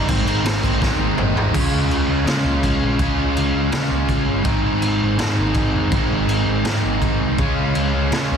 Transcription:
0.08 0.22 G#1 loud
0.08 0.25 G#2 medium
0.08 0.26 D#3 medium
0.08 0.26 G#3 loud
0.08 0.27 C4 medium
0.08 0.28 D#4 loud
0.08 kick loud
0.08 crash loud
0.25 0.39 G#1 loud
0.25 0.43 G#2 medium
0.25 0.44 D#3 loud
0.25 0.44 G#3 loud
0.25 0.45 C4 loud
0.25 0.45 D#4 loud
0.25 crash medium
0.43 0.57 G#1 medium
0.43 0.61 G#2 loud
0.43 0.61 D#3 loud
0.43 0.62 G#3 loud
0.43 0.63 C4 loud
0.43 0.63 D#4 loud
0.43 snare loud
0.43 crash medium
0.62 0.77 G#1 loud
0.62 0.79 G#2 medium
0.62 0.79 D#3 medium
0.62 0.80 G#3 medium
0.62 0.80 C4 medium
0.62 0.81 D#4 loud
0.62 kick medium
0.62 crash medium
0.80 0.94 G#1 loud
0.80 0.98 G#2 medium
0.80 0.98 D#3 loud
0.80 0.99 G#3 loud
0.80 0.99 C4 loud
0.80 0.99 D#4 loud
0.80 kick loud
0.80 snare medium
0.98 1.12 G#1 loud
0.98 1.16 G#2 medium
0.98 1.16 D#3 medium
0.98 1.17 G#3 medium
0.98 1.17 C4 medium
0.98 1.17 D#4 loud
1.17 1.31 G#1 medium
1.17 1.34 G#2 medium
1.17 1.35 D#3 loud
1.17 1.35 G#3 medium
1.17 1.36 C4 loud
1.17 1.36 D#4 loud
1.17 mid tom loud
1.35 1.49 G#1 medium
1.35 1.53 G#2 medium
1.35 1.52 D#3 medium
1.35 1.52 G#3 medium
1.35 1.54 C4 medium
1.35 1.54 D#4 loud
1.35 floor tom medium
1.52 1.71 C#2 medium
1.52 2.24 C#3 medium
1.52 2.26 G#3 medium
1.52 2.27 C#4 medium
1.52 2.28 F4 medium
1.52 kick loud
1.52 crash loud
1.52 crash medium
1.72 1.89 C#2 medium
1.90 2.07 C#2 medium
1.90 crash medium
2.09 2.25 C#2 medium
2.24 2.98 C#3 medium
2.24 2.44 C#3 medium
2.24 3.01 G#3 medium
2.24 2.99 C#4 medium
2.24 2.99 F4 medium
2.24 snare loud
2.24 crash medium
2.45 2.62 C#2 loud
2.63 2.80 C#2 medium
2.63 kick medium
2.63 crash medium
2.82 2.99 A#1 medium
2.99 3.16 C#2 medium
2.99 3.69 C#3 medium
2.99 3.71 G#3 medium
2.99 3.72 C#4 medium
2.99 3.73 F4 loud
2.99 kick loud
2.99 crash medium
3.18 3.35 C#2 loud
3.37 3.54 C#2 medium
3.37 crash medium
3.54 3.71 C#2 loud
3.70 4.43 C#3 medium
3.70 3.90 C#3 medium
3.70 4.44 G#3 medium
3.70 4.45 C#4 medium
3.70 4.46 F4 medium
3.70 snare loud
3.70 crash medium
3.91 4.08 C#2 loud
4.09 4.26 C#2 medium
4.09 kick medium
4.09 crash medium
4.28 4.44 G1 medium
4.42 4.62 G#1 medium
4.42 5.18 G#2 medium
4.42 5.17 D#3 medium
4.42 5.19 G#3 medium
4.42 5.20 C4 medium
4.42 kick loud
4.42 crash medium
4.46 5.20 D#4 loud
4.65 4.82 G#1 medium
4.82 5.00 G#1 medium
4.82 crash medium
5.03 5.19 G#1 medium
5.18 5.91 G#2 medium
5.18 5.37 G#2 medium
5.18 5.91 D#3 medium
5.18 5.94 G#3 medium
5.18 5.92 C4 medium
5.18 5.92 D#4 medium
5.18 snare loud
5.18 crash medium
5.39 5.54 G#1 loud
5.54 5.72 G#1 medium
5.54 kick medium
5.54 crash medium
5.74 5.91 F1 medium
5.92 6.09 G#1 medium
5.92 6.65 G#2 medium
5.92 6.65 D#3 medium
5.92 6.67 G#3 medium
5.92 6.66 C4 medium
5.92 kick loud
5.92 crash medium
5.96 6.66 D#4 loud
6.11 6.27 G#1 medium
6.27 6.45 G#1 medium
6.27 crash medium
6.46 6.63 G#1 medium
6.65 6.82 G#2 medium
6.65 7.38 G#2 medium
6.65 7.38 D#3 medium
6.65 7.40 G#3 medium
6.65 7.39 C4 medium
6.65 snare loud
6.65 crash medium
6.69 7.39 D#4 medium
6.84 7.01 G#1 loud
7.02 7.19 G#1 medium
7.02 kick medium
7.02 crash medium
7.21 7.37 C2 medium
7.38 7.55 C#2 medium
7.38 8.12 C#3 medium
7.38 8.13 G#3 medium
7.38 8.14 C#4 medium
7.38 8.15 F4 medium
7.38 kick loud
7.38 crash medium
7.58 7.74 C#2 medium
7.75 7.92 C#2 medium
7.75 crash medium
7.95 8.11 C#2 loud
8.11 8.28 C#3 medium
8.11 8.37 C#3 medium
8.11 8.37 G#3 medium
8.11 8.37 C#4 medium
8.11 snare loud
8.11 crash medium
8.15 8.37 F4 medium
8.32 8.37 C#2 loud

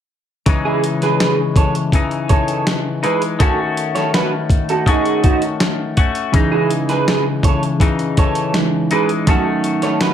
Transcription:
0.46 1.92 C#3 medium
0.46 1.93 E3 medium
0.46 1.94 G#3 medium
0.46 1.95 D#4 medium
0.46 kick loud
0.46 closed hi-hat medium
0.65 0.83 E4 soft
0.65 0.82 G#4 medium
0.84 closed hi-hat medium
1.02 1.38 G#4 soft
1.02 1.37 B4 medium
1.02 snare soft
1.02 closed hi-hat soft
1.20 snare loud
1.20 closed hi-hat medium
1.56 1.74 A4 soft
1.56 1.74 C#5 medium
1.56 kick medium
1.56 closed hi-hat medium
1.75 closed hi-hat soft
1.92 3.03 C#3 medium
1.92 3.03 E3 medium
1.92 3.02 D#4 medium
1.92 kick medium
1.92 closed hi-hat medium
2.11 closed hi-hat soft
2.29 2.65 A4 medium
2.29 2.65 C#5 medium
2.29 kick medium
2.29 closed hi-hat medium
2.48 closed hi-hat soft
2.67 snare medium
2.67 closed hi-hat medium
3.03 3.38 E3 soft
3.03 3.40 G#3 soft
3.03 3.40 D#4 soft
3.03 3.21 G#4 soft
3.03 3.21 B4 medium
3.03 closed hi-hat medium
3.22 closed hi-hat soft
3.39 4.86 D#3 medium
3.39 4.86 A3 medium
3.39 4.88 C#4 medium
3.39 3.58 F#4 medium
3.39 4.87 F#4 medium
3.39 3.58 A4 medium
3.39 kick loud
3.39 closed hi-hat medium
3.77 closed hi-hat medium
3.95 4.13 A4 medium
3.95 4.13 C#5 medium
3.95 snare soft
3.95 closed hi-hat soft
4.14 4.31 F#4 medium
4.14 4.31 B4 medium
4.14 snare loud
4.14 closed hi-hat medium
4.50 kick medium
4.50 closed hi-hat medium
4.69 4.87 F#4 medium
4.69 4.87 A4 medium
4.69 closed hi-hat soft
4.86 6.02 D#3 medium
4.86 5.97 A3 medium
4.86 5.98 C#4 medium
4.86 5.23 D#4 medium
4.86 5.96 F#4 medium
4.86 5.23 G#4 medium
4.86 kick medium
4.86 closed hi-hat medium
5.05 closed hi-hat soft
5.24 5.42 D#4 soft
5.24 5.41 F#4 medium
5.24 kick medium
5.24 closed hi-hat medium
5.42 closed hi-hat soft
5.60 snare medium
5.60 closed hi-hat medium
5.97 6.35 A3 soft
5.97 6.35 C#4 soft
5.97 6.34 F#4 soft
5.97 kick medium
5.97 closed hi-hat medium
6.15 closed hi-hat soft
6.32 7.79 C#3 medium
6.32 8.49 E3 medium
6.32 7.80 E3 medium
6.32 7.81 G#3 medium
6.32 8.51 C#4 medium
6.32 8.50 G#4 medium
6.32 kick loud
6.32 closed hi-hat medium
6.36 7.82 D#4 medium
6.36 8.51 D#4 medium
6.52 6.70 E4 medium
6.52 6.69 G#4 medium
6.71 closed hi-hat medium
6.89 7.25 G#4 soft
6.89 7.24 B4 medium
6.89 snare soft
6.89 closed hi-hat soft
7.08 snare loud
7.08 closed hi-hat medium
7.43 7.62 A4 medium
7.43 7.62 C#5 medium
7.43 kick medium
7.43 closed hi-hat medium
7.63 closed hi-hat soft
7.80 8.91 C#3 medium
7.80 8.91 E3 medium
7.80 8.91 D#4 medium
7.80 kick medium
7.80 closed hi-hat medium
7.99 closed hi-hat soft
8.17 8.53 A4 medium
8.17 8.53 C#5 medium
8.17 kick medium
8.17 closed hi-hat medium
8.35 closed hi-hat soft
8.52 9.25 E3 soft
8.52 9.27 G#3 soft
8.52 9.27 C#4 soft
8.52 9.28 D#4 medium
8.52 snare loud
8.52 closed hi-hat medium
8.91 9.27 E3 soft
8.91 9.28 G#3 soft
8.91 9.27 D#4 medium
8.91 9.09 G#4 soft
8.91 9.09 B4 medium
8.91 closed hi-hat medium
9.09 closed hi-hat soft
9.26 10.14 D#3 medium
9.26 9.33 E3 medium
9.26 10.14 A3 medium
9.26 10.14 C#4 medium
9.26 9.45 F#4 medium
9.26 9.45 A4 medium
9.26 kick loud
9.26 closed hi-hat medium
9.30 10.14 F#3 medium
9.30 10.14 D#4 medium
9.30 10.14 F#4 medium
9.64 closed hi-hat medium
9.82 10.01 A4 medium
9.82 10.00 C#5 medium
9.82 snare soft
9.82 closed hi-hat soft
10.01 10.14 F#4 medium
10.01 10.14 B4 medium
10.01 snare loud
10.01 closed hi-hat medium

